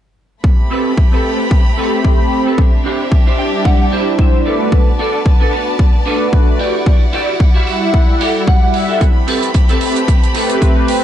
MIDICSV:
0, 0, Header, 1, 6, 480
1, 0, Start_track
1, 0, Tempo, 535714
1, 393, Time_signature, 4, 2, 24, 8
1, 9891, End_track
2, 0, Start_track
2, 0, Title_t, "Clean electric guitar"
2, 0, Program_c, 0, 27
2, 629, Note_on_c, 0, 60, 99
2, 634, Note_on_c, 0, 67, 82
2, 634, Note_on_c, 0, 69, 89
2, 638, Note_on_c, 0, 71, 108
2, 818, Note_off_c, 0, 60, 0
2, 819, Note_off_c, 0, 67, 0
2, 821, Note_off_c, 0, 69, 0
2, 822, Note_off_c, 0, 71, 0
2, 1001, Note_on_c, 0, 60, 78
2, 1007, Note_on_c, 0, 67, 66
2, 1007, Note_on_c, 0, 69, 72
2, 1011, Note_on_c, 0, 71, 86
2, 1297, Note_off_c, 0, 60, 0
2, 1299, Note_off_c, 0, 67, 0
2, 1300, Note_off_c, 0, 69, 0
2, 1302, Note_off_c, 0, 71, 0
2, 1587, Note_on_c, 0, 60, 99
2, 1593, Note_on_c, 0, 67, 77
2, 1593, Note_on_c, 0, 69, 85
2, 1599, Note_on_c, 0, 71, 87
2, 1777, Note_off_c, 0, 60, 0
2, 1779, Note_off_c, 0, 67, 0
2, 1780, Note_off_c, 0, 69, 0
2, 1782, Note_off_c, 0, 71, 0
2, 2198, Note_on_c, 0, 60, 73
2, 2203, Note_on_c, 0, 69, 72
2, 2205, Note_on_c, 0, 67, 55
2, 2210, Note_on_c, 0, 71, 77
2, 2309, Note_off_c, 0, 60, 0
2, 2311, Note_off_c, 0, 67, 0
2, 2312, Note_off_c, 0, 69, 0
2, 2314, Note_off_c, 0, 71, 0
2, 2546, Note_on_c, 0, 62, 96
2, 2552, Note_on_c, 0, 64, 80
2, 2552, Note_on_c, 0, 67, 93
2, 2559, Note_on_c, 0, 72, 99
2, 2737, Note_off_c, 0, 62, 0
2, 2738, Note_off_c, 0, 64, 0
2, 2739, Note_off_c, 0, 67, 0
2, 2741, Note_off_c, 0, 72, 0
2, 2920, Note_on_c, 0, 62, 79
2, 2923, Note_on_c, 0, 64, 64
2, 2930, Note_on_c, 0, 72, 76
2, 2932, Note_on_c, 0, 67, 60
2, 3026, Note_off_c, 0, 64, 0
2, 3030, Note_on_c, 0, 79, 65
2, 3217, Note_off_c, 0, 62, 0
2, 3220, Note_off_c, 0, 67, 0
2, 3221, Note_off_c, 0, 72, 0
2, 3255, Note_off_c, 0, 79, 0
2, 3271, Note_on_c, 0, 78, 69
2, 3506, Note_on_c, 0, 62, 96
2, 3511, Note_off_c, 0, 78, 0
2, 3512, Note_on_c, 0, 67, 81
2, 3515, Note_on_c, 0, 64, 80
2, 3519, Note_on_c, 0, 72, 91
2, 3697, Note_off_c, 0, 62, 0
2, 3699, Note_off_c, 0, 64, 0
2, 3700, Note_off_c, 0, 67, 0
2, 3701, Note_off_c, 0, 72, 0
2, 3754, Note_on_c, 0, 76, 68
2, 3977, Note_off_c, 0, 76, 0
2, 3992, Note_on_c, 0, 74, 67
2, 3995, Note_on_c, 0, 69, 71
2, 3996, Note_on_c, 0, 62, 72
2, 3998, Note_on_c, 0, 71, 92
2, 4217, Note_off_c, 0, 74, 0
2, 4387, Note_off_c, 0, 62, 0
2, 4389, Note_off_c, 0, 69, 0
2, 4391, Note_off_c, 0, 71, 0
2, 4469, Note_on_c, 0, 62, 100
2, 4474, Note_on_c, 0, 69, 91
2, 4480, Note_on_c, 0, 74, 95
2, 4658, Note_off_c, 0, 62, 0
2, 4661, Note_off_c, 0, 69, 0
2, 4662, Note_off_c, 0, 74, 0
2, 4841, Note_on_c, 0, 62, 79
2, 4845, Note_on_c, 0, 69, 70
2, 4849, Note_on_c, 0, 71, 88
2, 5137, Note_off_c, 0, 62, 0
2, 5139, Note_off_c, 0, 69, 0
2, 5141, Note_off_c, 0, 71, 0
2, 5426, Note_on_c, 0, 62, 97
2, 5430, Note_on_c, 0, 69, 90
2, 5434, Note_on_c, 0, 71, 109
2, 5616, Note_off_c, 0, 62, 0
2, 5619, Note_off_c, 0, 69, 0
2, 5620, Note_off_c, 0, 71, 0
2, 5905, Note_on_c, 0, 66, 75
2, 5906, Note_on_c, 0, 64, 75
2, 5907, Note_on_c, 0, 67, 78
2, 5914, Note_on_c, 0, 74, 76
2, 6303, Note_off_c, 0, 64, 0
2, 6304, Note_off_c, 0, 66, 0
2, 6306, Note_off_c, 0, 67, 0
2, 6307, Note_off_c, 0, 74, 0
2, 6383, Note_on_c, 0, 64, 102
2, 6387, Note_on_c, 0, 66, 93
2, 6391, Note_on_c, 0, 67, 86
2, 6392, Note_on_c, 0, 74, 113
2, 6575, Note_off_c, 0, 64, 0
2, 6577, Note_off_c, 0, 66, 0
2, 6578, Note_off_c, 0, 67, 0
2, 6579, Note_off_c, 0, 74, 0
2, 6757, Note_on_c, 0, 64, 77
2, 6760, Note_on_c, 0, 66, 74
2, 6766, Note_on_c, 0, 67, 64
2, 6767, Note_on_c, 0, 76, 87
2, 7055, Note_off_c, 0, 64, 0
2, 7057, Note_off_c, 0, 66, 0
2, 7058, Note_off_c, 0, 67, 0
2, 7060, Note_off_c, 0, 76, 0
2, 7345, Note_on_c, 0, 64, 94
2, 7349, Note_on_c, 0, 66, 85
2, 7353, Note_on_c, 0, 69, 106
2, 7355, Note_on_c, 0, 67, 74
2, 7536, Note_off_c, 0, 64, 0
2, 7538, Note_off_c, 0, 66, 0
2, 7540, Note_off_c, 0, 67, 0
2, 7540, Note_off_c, 0, 69, 0
2, 7592, Note_on_c, 0, 78, 67
2, 7957, Note_on_c, 0, 64, 76
2, 7964, Note_on_c, 0, 69, 79
2, 7965, Note_on_c, 0, 66, 63
2, 7968, Note_on_c, 0, 67, 62
2, 8039, Note_off_c, 0, 78, 0
2, 8069, Note_off_c, 0, 64, 0
2, 8071, Note_off_c, 0, 66, 0
2, 8072, Note_off_c, 0, 67, 0
2, 8073, Note_off_c, 0, 69, 0
2, 8306, Note_on_c, 0, 60, 99
2, 8311, Note_on_c, 0, 69, 97
2, 8312, Note_on_c, 0, 67, 84
2, 8317, Note_on_c, 0, 71, 97
2, 8497, Note_off_c, 0, 60, 0
2, 8499, Note_off_c, 0, 67, 0
2, 8499, Note_off_c, 0, 69, 0
2, 8501, Note_off_c, 0, 71, 0
2, 8680, Note_on_c, 0, 60, 80
2, 8686, Note_on_c, 0, 69, 74
2, 8687, Note_on_c, 0, 67, 65
2, 8692, Note_on_c, 0, 71, 77
2, 8977, Note_off_c, 0, 60, 0
2, 8979, Note_off_c, 0, 67, 0
2, 8980, Note_off_c, 0, 69, 0
2, 8981, Note_off_c, 0, 71, 0
2, 9268, Note_on_c, 0, 60, 92
2, 9274, Note_on_c, 0, 67, 81
2, 9275, Note_on_c, 0, 69, 89
2, 9281, Note_on_c, 0, 71, 99
2, 9458, Note_off_c, 0, 60, 0
2, 9459, Note_off_c, 0, 67, 0
2, 9461, Note_off_c, 0, 69, 0
2, 9462, Note_off_c, 0, 71, 0
2, 9891, End_track
3, 0, Start_track
3, 0, Title_t, "Violin section"
3, 0, Program_c, 1, 48
3, 394, Note_on_c, 1, 60, 62
3, 395, Note_on_c, 1, 57, 68
3, 395, Note_on_c, 1, 67, 63
3, 396, Note_on_c, 1, 83, 74
3, 2295, Note_off_c, 1, 57, 0
3, 2295, Note_off_c, 1, 67, 0
3, 2295, Note_off_c, 1, 83, 0
3, 2315, Note_on_c, 1, 67, 79
3, 2315, Note_on_c, 1, 76, 62
3, 2316, Note_on_c, 1, 62, 70
3, 3958, Note_off_c, 1, 60, 0
3, 3977, Note_off_c, 1, 67, 0
3, 3978, Note_off_c, 1, 62, 0
3, 3978, Note_off_c, 1, 76, 0
3, 3987, Note_on_c, 1, 59, 68
3, 3987, Note_on_c, 1, 81, 75
3, 3988, Note_on_c, 1, 71, 63
3, 3989, Note_on_c, 1, 74, 63
3, 5891, Note_off_c, 1, 59, 0
3, 5891, Note_off_c, 1, 71, 0
3, 5891, Note_off_c, 1, 81, 0
3, 5915, Note_on_c, 1, 64, 70
3, 5915, Note_on_c, 1, 78, 64
3, 8035, Note_off_c, 1, 74, 0
3, 8053, Note_off_c, 1, 64, 0
3, 8053, Note_off_c, 1, 78, 0
3, 8072, Note_on_c, 1, 60, 65
3, 8073, Note_on_c, 1, 57, 70
3, 8073, Note_on_c, 1, 67, 67
3, 8073, Note_on_c, 1, 83, 78
3, 9891, Note_off_c, 1, 57, 0
3, 9891, Note_off_c, 1, 60, 0
3, 9891, Note_off_c, 1, 67, 0
3, 9891, Note_off_c, 1, 83, 0
3, 9891, End_track
4, 0, Start_track
4, 0, Title_t, "Analog synth pad"
4, 0, Program_c, 2, 89
4, 1111, Note_on_c, 2, 57, 71
4, 1117, Note_on_c, 2, 60, 66
4, 1119, Note_on_c, 2, 67, 64
4, 1121, Note_on_c, 2, 71, 77
4, 1240, Note_off_c, 2, 57, 0
4, 1242, Note_off_c, 2, 60, 0
4, 1244, Note_off_c, 2, 67, 0
4, 1245, Note_off_c, 2, 71, 0
4, 1584, Note_on_c, 2, 57, 83
4, 1590, Note_on_c, 2, 60, 73
4, 1597, Note_on_c, 2, 67, 75
4, 1603, Note_on_c, 2, 83, 90
4, 2296, Note_off_c, 2, 57, 0
4, 2299, Note_off_c, 2, 60, 0
4, 2302, Note_off_c, 2, 67, 0
4, 2305, Note_off_c, 2, 83, 0
4, 3027, Note_on_c, 2, 55, 74
4, 3031, Note_on_c, 2, 62, 70
4, 3034, Note_on_c, 2, 64, 67
4, 3036, Note_on_c, 2, 74, 79
4, 3485, Note_off_c, 2, 55, 0
4, 3486, Note_off_c, 2, 62, 0
4, 3488, Note_off_c, 2, 64, 0
4, 3489, Note_off_c, 2, 74, 0
4, 3508, Note_on_c, 2, 55, 84
4, 3510, Note_on_c, 2, 62, 78
4, 3513, Note_on_c, 2, 64, 76
4, 3515, Note_on_c, 2, 74, 93
4, 3624, Note_off_c, 2, 55, 0
4, 3625, Note_off_c, 2, 62, 0
4, 3627, Note_off_c, 2, 64, 0
4, 3628, Note_off_c, 2, 74, 0
4, 3640, Note_on_c, 2, 55, 73
4, 3644, Note_on_c, 2, 62, 67
4, 3647, Note_on_c, 2, 64, 66
4, 3651, Note_on_c, 2, 72, 80
4, 3964, Note_off_c, 2, 55, 0
4, 3967, Note_off_c, 2, 62, 0
4, 3968, Note_off_c, 2, 64, 0
4, 3970, Note_off_c, 2, 72, 0
4, 3986, Note_on_c, 2, 57, 94
4, 3988, Note_on_c, 2, 62, 87
4, 3991, Note_on_c, 2, 66, 84
4, 3995, Note_on_c, 2, 71, 100
4, 4179, Note_off_c, 2, 57, 0
4, 4180, Note_off_c, 2, 62, 0
4, 4182, Note_off_c, 2, 66, 0
4, 4184, Note_off_c, 2, 71, 0
4, 4945, Note_on_c, 2, 57, 73
4, 4946, Note_on_c, 2, 62, 65
4, 4950, Note_on_c, 2, 66, 66
4, 4953, Note_on_c, 2, 71, 81
4, 5077, Note_off_c, 2, 57, 0
4, 5077, Note_off_c, 2, 62, 0
4, 5079, Note_off_c, 2, 66, 0
4, 5081, Note_off_c, 2, 71, 0
4, 5425, Note_on_c, 2, 57, 80
4, 5428, Note_on_c, 2, 62, 74
4, 5431, Note_on_c, 2, 66, 74
4, 5435, Note_on_c, 2, 71, 91
4, 5896, Note_off_c, 2, 57, 0
4, 5898, Note_off_c, 2, 62, 0
4, 5899, Note_off_c, 2, 66, 0
4, 5901, Note_off_c, 2, 71, 0
4, 6866, Note_on_c, 2, 55, 72
4, 6869, Note_on_c, 2, 64, 67
4, 6873, Note_on_c, 2, 78, 69
4, 6875, Note_on_c, 2, 76, 83
4, 7324, Note_off_c, 2, 55, 0
4, 7326, Note_off_c, 2, 64, 0
4, 7327, Note_off_c, 2, 78, 0
4, 7328, Note_off_c, 2, 76, 0
4, 7484, Note_on_c, 2, 55, 72
4, 7487, Note_on_c, 2, 64, 67
4, 7490, Note_on_c, 2, 66, 68
4, 7493, Note_on_c, 2, 74, 79
4, 7587, Note_off_c, 2, 55, 0
4, 7589, Note_off_c, 2, 64, 0
4, 7590, Note_off_c, 2, 66, 0
4, 7592, Note_off_c, 2, 74, 0
4, 7720, Note_on_c, 2, 55, 84
4, 7722, Note_on_c, 2, 64, 77
4, 7726, Note_on_c, 2, 78, 76
4, 7729, Note_on_c, 2, 76, 93
4, 8057, Note_off_c, 2, 55, 0
4, 8058, Note_off_c, 2, 64, 0
4, 8060, Note_off_c, 2, 78, 0
4, 8062, Note_off_c, 2, 76, 0
4, 8790, Note_on_c, 2, 57, 75
4, 8793, Note_on_c, 2, 60, 68
4, 8796, Note_on_c, 2, 67, 67
4, 8799, Note_on_c, 2, 71, 78
4, 8919, Note_off_c, 2, 57, 0
4, 8921, Note_off_c, 2, 60, 0
4, 8922, Note_off_c, 2, 67, 0
4, 8924, Note_off_c, 2, 71, 0
4, 9268, Note_on_c, 2, 57, 82
4, 9273, Note_on_c, 2, 60, 76
4, 9279, Note_on_c, 2, 67, 75
4, 9286, Note_on_c, 2, 71, 90
4, 9891, Note_off_c, 2, 57, 0
4, 9891, Note_off_c, 2, 60, 0
4, 9891, Note_off_c, 2, 67, 0
4, 9891, Note_off_c, 2, 71, 0
4, 9891, End_track
5, 0, Start_track
5, 0, Title_t, "Muted clean electric guitar strokes"
5, 1963, Note_on_c, 9, 29, 29
5, 2053, Note_off_c, 9, 29, 0
5, 2069, Note_on_c, 9, 29, 29
5, 2158, Note_off_c, 9, 29, 0
5, 3885, Note_on_c, 9, 29, 29
5, 3975, Note_off_c, 9, 29, 0
5, 5797, Note_on_c, 9, 29, 30
5, 5886, Note_off_c, 9, 29, 0
5, 7723, Note_on_c, 9, 29, 30
5, 7812, Note_off_c, 9, 29, 0
5, 7830, Note_on_c, 9, 29, 30
5, 7919, Note_off_c, 9, 29, 0
5, 9643, Note_on_c, 9, 29, 30
5, 9733, Note_off_c, 9, 29, 0
5, 9747, Note_on_c, 9, 29, 30
5, 9837, Note_off_c, 9, 29, 0
5, 9891, End_track
6, 0, Start_track
6, 0, Title_t, "Drums"
6, 393, Note_on_c, 9, 36, 103
6, 483, Note_off_c, 9, 36, 0
6, 636, Note_on_c, 9, 46, 93
6, 725, Note_off_c, 9, 46, 0
6, 874, Note_on_c, 9, 36, 101
6, 963, Note_off_c, 9, 36, 0
6, 1111, Note_on_c, 9, 46, 83
6, 1200, Note_off_c, 9, 46, 0
6, 1353, Note_on_c, 9, 36, 103
6, 1443, Note_off_c, 9, 36, 0
6, 1607, Note_on_c, 9, 46, 90
6, 1697, Note_off_c, 9, 46, 0
6, 1832, Note_on_c, 9, 36, 100
6, 1922, Note_off_c, 9, 36, 0
6, 2071, Note_on_c, 9, 46, 86
6, 2160, Note_off_c, 9, 46, 0
6, 2313, Note_on_c, 9, 36, 110
6, 2402, Note_off_c, 9, 36, 0
6, 2560, Note_on_c, 9, 46, 104
6, 2650, Note_off_c, 9, 46, 0
6, 2792, Note_on_c, 9, 36, 108
6, 2881, Note_off_c, 9, 36, 0
6, 3035, Note_on_c, 9, 46, 83
6, 3125, Note_off_c, 9, 46, 0
6, 3272, Note_on_c, 9, 36, 107
6, 3362, Note_off_c, 9, 36, 0
6, 3515, Note_on_c, 9, 46, 108
6, 3604, Note_off_c, 9, 46, 0
6, 3751, Note_on_c, 9, 36, 104
6, 3841, Note_off_c, 9, 36, 0
6, 3990, Note_on_c, 9, 46, 91
6, 4079, Note_off_c, 9, 46, 0
6, 4231, Note_on_c, 9, 36, 113
6, 4320, Note_off_c, 9, 36, 0
6, 4473, Note_on_c, 9, 46, 98
6, 4562, Note_off_c, 9, 46, 0
6, 4710, Note_on_c, 9, 36, 110
6, 4800, Note_off_c, 9, 36, 0
6, 4953, Note_on_c, 9, 46, 98
6, 5042, Note_off_c, 9, 46, 0
6, 5189, Note_on_c, 9, 36, 109
6, 5279, Note_off_c, 9, 36, 0
6, 5426, Note_on_c, 9, 46, 101
6, 5515, Note_off_c, 9, 46, 0
6, 5670, Note_on_c, 9, 36, 111
6, 5760, Note_off_c, 9, 36, 0
6, 5907, Note_on_c, 9, 46, 96
6, 5997, Note_off_c, 9, 46, 0
6, 6150, Note_on_c, 9, 36, 109
6, 6239, Note_off_c, 9, 36, 0
6, 6388, Note_on_c, 9, 46, 91
6, 6478, Note_off_c, 9, 46, 0
6, 6631, Note_on_c, 9, 36, 111
6, 6721, Note_off_c, 9, 36, 0
6, 6872, Note_on_c, 9, 46, 88
6, 6962, Note_off_c, 9, 46, 0
6, 7112, Note_on_c, 9, 36, 108
6, 7201, Note_off_c, 9, 36, 0
6, 7354, Note_on_c, 9, 46, 97
6, 7444, Note_off_c, 9, 46, 0
6, 7593, Note_on_c, 9, 36, 109
6, 7683, Note_off_c, 9, 36, 0
6, 7829, Note_on_c, 9, 46, 87
6, 7919, Note_off_c, 9, 46, 0
6, 8074, Note_on_c, 9, 36, 106
6, 8074, Note_on_c, 9, 42, 66
6, 8163, Note_off_c, 9, 36, 0
6, 8164, Note_off_c, 9, 42, 0
6, 8313, Note_on_c, 9, 46, 98
6, 8402, Note_off_c, 9, 46, 0
6, 8445, Note_on_c, 9, 42, 59
6, 8535, Note_off_c, 9, 42, 0
6, 8550, Note_on_c, 9, 42, 75
6, 8553, Note_on_c, 9, 36, 108
6, 8640, Note_off_c, 9, 42, 0
6, 8643, Note_off_c, 9, 36, 0
6, 8683, Note_on_c, 9, 42, 47
6, 8773, Note_off_c, 9, 42, 0
6, 8789, Note_on_c, 9, 46, 89
6, 8879, Note_off_c, 9, 46, 0
6, 8926, Note_on_c, 9, 42, 66
6, 9016, Note_off_c, 9, 42, 0
6, 9033, Note_on_c, 9, 36, 108
6, 9034, Note_on_c, 9, 42, 66
6, 9123, Note_off_c, 9, 36, 0
6, 9124, Note_off_c, 9, 42, 0
6, 9170, Note_on_c, 9, 42, 46
6, 9260, Note_off_c, 9, 42, 0
6, 9270, Note_on_c, 9, 46, 91
6, 9360, Note_off_c, 9, 46, 0
6, 9404, Note_on_c, 9, 42, 61
6, 9494, Note_off_c, 9, 42, 0
6, 9513, Note_on_c, 9, 36, 105
6, 9514, Note_on_c, 9, 42, 69
6, 9603, Note_off_c, 9, 36, 0
6, 9603, Note_off_c, 9, 42, 0
6, 9751, Note_on_c, 9, 46, 89
6, 9841, Note_off_c, 9, 46, 0
6, 9891, End_track
0, 0, End_of_file